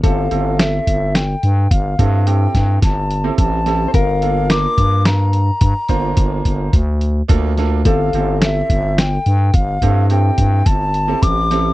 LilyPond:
<<
  \new Staff \with { instrumentName = "Flute" } { \time 7/4 \key f \major \tempo 4 = 107 f''4 e''4 g''4 f''4 g''4 a''4 a''4 | f''4 d'''4 bes''2. r2 | f''4 e''4 g''4 f''4 g''4 a''4 d'''4 | }
  \new Staff \with { instrumentName = "Clean electric guitar" } { \time 7/4 \key f \major a'1.~ a'8.~ a'32 c''32 | bes'1.~ bes'4 | a'1.~ a'4 | }
  \new Staff \with { instrumentName = "Grand piano" } { \time 7/4 \key f \major <c' e' g' a'>8 <c' e' g' a'>4. r4. <c' e' g' a'>8 <c' e' g' a'>4~ <c' e' g' a'>16 r8 <c' e' g' a'>8 r16 <c' e' g' a'>8 | r8 <bes d' f' a'>8 <bes d' f' bes'>4. r4 <bes d' f' c''>4. r4 <bes d' f' a'>8 <bes d' f' a'>8 | <c' e' g' a'>8 <c' e' g' a'>4. r4. <c' e' g' a'>8 <c' e' g' a'>4~ <c' e' g' a'>16 r8 <c' e' g' a'>8 r16 <c' e' g' a'>8 | }
  \new Staff \with { instrumentName = "FM bass" } { \clef bass \time 7/4 \key f \major g,,8 g,,4 g,,4 g,8 g,,8 g,4 g,8 g,,4 a,,4 | g,,4. g,4. g,16 r16 g,,8 g,,8 g,,8 d,4 d,4 | g,,8 g,,4 g,,4 g,8 g,,8 g,4 g,8 g,,4 a,,4 | }
  \new DrumStaff \with { instrumentName = "Drums" } \drummode { \time 7/4 <hh bd>8 hh8 <hh sn>8 <hh bd>8 <hh sn>8 hh8 <hh bd>8 <hh bd>8 hh8 <hh bd sn>8 <hh bd sn>8 hh8 <hh bd>8 <hh sn>8 | <hh bd>8 hh8 <hh sn>8 <hh bd>8 <hh sn>8 hh8 <hh bd>8 <hh bd>8 <hh bd>8 <hh bd>8 <hh bd>8 hh8 <hh bd>8 <hh sn>8 | <hh bd>8 hh8 <hh sn>8 <hh bd>8 <hh sn>8 hh8 <hh bd>8 <hh bd>8 hh8 <hh bd>8 <hh bd>8 hh8 <hh bd>8 <hh sn>8 | }
>>